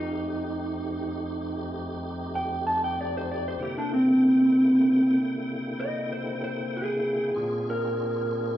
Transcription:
Already playing: tonewheel organ F2 A3 C4 D#4 G4, clean electric guitar D#4
2.35 clean electric guitar G5
2.67 clean electric guitar A5
2.84 clean electric guitar G5
3.01 clean electric guitar D5
3.17 clean electric guitar C5
3.32 clean electric guitar D5
3.48 clean electric guitar C5
3.59 tonewheel organ C3 D3 A#3 E4 G5, clean electric guitar G4
3.78 clean electric guitar D4
3.94 clean electric guitar C4
5.80 clean electric guitar D#5
6.12 clean electric guitar C5
6.44 clean electric guitar C5
6.77 clean electric guitar G#4
7.35 tonewheel organ A#2 C4 D4 F4 G#4
7.70 clean electric guitar A#4

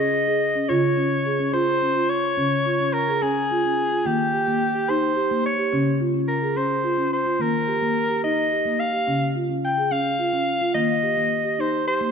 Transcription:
Already playing: marimba C#3, soprano saxophone D#5
0.00 marimba C#4
0.27 marimba G#4
0.55 marimba C#4
0.69 marimba C#3 F4, soprano saxophone C#5
0.97 marimba C#4
1.25 marimba G#4
1.39 marimba C#4
1.53 marimba F4, soprano saxophone C5
1.82 marimba C#4
1.96 marimba F4
2.09 soprano saxophone C#5
2.37 marimba C#3 C#4
2.66 marimba F4
2.80 marimba C#4
2.93 soprano saxophone A#4
3.08 marimba G#4
3.22 marimba C#4, soprano saxophone G#4
3.51 marimba F4
3.65 marimba C#4
3.92 marimba F4
4.06 marimba D#3 A#3, soprano saxophone G4
4.33 marimba G4
4.47 marimba A#3
4.75 marimba G4
4.89 marimba D#4, soprano saxophone C5
5.17 marimba G4
5.31 marimba A#3
5.46 soprano saxophone C#5
5.59 marimba G4
5.73 marimba C#3 C#4
6.00 marimba F4
6.14 marimba C#4
6.28 soprano saxophone A#4
6.42 marimba G#4
6.56 marimba C#4, soprano saxophone C5
6.84 marimba F4
6.97 marimba C#4
7.13 soprano saxophone C5
7.26 marimba F4
7.40 marimba D#3 A#3, soprano saxophone A#4
7.67 marimba G4
7.82 marimba A#3
8.10 marimba G4
8.24 marimba D#4, soprano saxophone D#5
8.52 marimba G4
8.65 marimba A#3
8.80 soprano saxophone F5
8.93 marimba G4
9.07 marimba C#3 C#4
9.35 marimba F4
9.49 marimba C#4
9.64 soprano saxophone G5
9.77 marimba G#4
9.91 marimba C#4, soprano saxophone F5
10.19 marimba F4
10.33 marimba C#4
10.61 marimba F4
10.75 marimba D#3 A#3, soprano saxophone D#5
11.03 marimba G4
11.17 marimba A#3
11.44 marimba G4
11.58 marimba D#4, soprano saxophone C5
11.87 marimba G4, soprano saxophone C5
12.01 marimba A#3

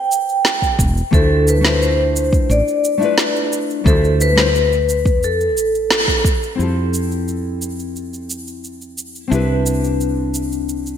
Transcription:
Already playing: vibraphone G5
0.12 shaker
0.29 shaker
0.45 snare, shaker
0.62 kick, shaker
0.79 fretless electric bass E1, kick, shaker
0.97 shaker
1.11 fretless electric bass D2, nylon-string guitar A3 D4 E4 F4 C5, vibraphone A4, kick, shaker
1.48 vibraphone B4, shaker
1.61 nylon-string guitar A3 D4 E4, snare
1.65 nylon-string guitar F4 C5, shaker
1.82 vibraphone C5, shaker
2.16 shaker
2.33 kick, shaker
2.49 fretless electric bass A1, vibraphone D5, shaker
2.68 shaker
2.84 shaker
2.98 nylon-string guitar A3 D4 E4
3.02 nylon-string guitar F4 B4, shaker
3.18 snare, shaker
3.36 shaker
3.52 shaker
3.70 shaker
3.84 fretless electric bass D2, nylon-string guitar A3 D4 E4 F4 C5, vibraphone A4, kick, shaker
4.04 shaker
4.21 vibraphone B4, shaker
4.36 nylon-string guitar A3 D4 E4 F4 C5, snare, shaker
4.55 shaker
4.72 shaker
4.89 shaker
5.06 kick, shaker
5.22 fretless electric bass F2, vibraphone A4, shaker
5.41 shaker
5.57 fretless electric bass A1, shaker
5.75 shaker
5.91 snare, shaker
6.08 kick, shaker
6.25 kick, shaker
6.43 shaker
6.55 fretless electric bass F2, nylon-string guitar C4 E4 F4
6.60 nylon-string guitar G4 A4, shaker
6.94 shaker
7.11 shaker
7.28 shaker
7.62 shaker
7.79 shaker
7.96 shaker
8.14 shaker
8.30 shaker
8.47 shaker
8.64 shaker
8.81 shaker
8.98 shaker
9.15 shaker
9.28 fretless electric bass C2, nylon-string guitar C4 D4 E4
9.32 nylon-string guitar G4 B4, shaker
9.66 shaker
9.84 shaker
10.00 shaker
10.34 shaker
10.52 shaker
10.69 shaker
10.86 shaker

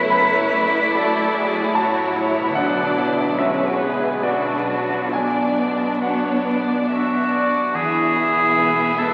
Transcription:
Already playing: double bass section F#1, harp F#2 A3 E4 F#4, grand piano A3 E4 F#4 A4, viola section A3, violin section E4, cello section B4
0.10 grand piano F#2 B5, violin section C#5
0.52 grand piano A3, violin section D5
0.93 viola section A3, grand piano F#4, cello section A4
1.33 viola section F#3, grand piano A3, cello section G#4
1.74 double bass section A1, grand piano F#4 A5, cello section F#4, violin section C#5
2.16 grand piano E4, cello section E4, violin section C#5
2.40 harp B2
2.44 harp B3
2.49 harp D3
2.53 grand piano B1 F#5, cello section D4, harp F#4, violin section D5
2.58 double bass section B1, violin section D4
2.98 grand piano B3, cello section E4
3.38 viola section G#3, violin section C#4 B4, grand piano F#4 E5, cello section F#4
3.80 violin section B3, cello section G#4, grand piano B4
4.22 viola section F#3, violin section D4 B4, grand piano F#4 D5, cello section F#4
4.67 viola section F#3, grand piano D4, cello section F#4
5.13 grand piano B1 G#5, viola section B3, cello section D4, violin section D4 D5
5.58 grand piano B3
6.02 grand piano F#4 F#5, violin section C#5
6.45 grand piano B4, violin section D5
6.88 grand piano F#4, oboe F#4, violin section E5
7.31 grand piano D4, violin section D5
7.73 double bass section E1, grand piano E2, cello section E2, harp E3, viola section B3, violin section E4 E5, oboe G#4
8.16 grand piano E4 G#4
8.57 grand piano B3 E4 G#4, harp B4
8.99 grand piano E4 B4, oboe A4, harp E5

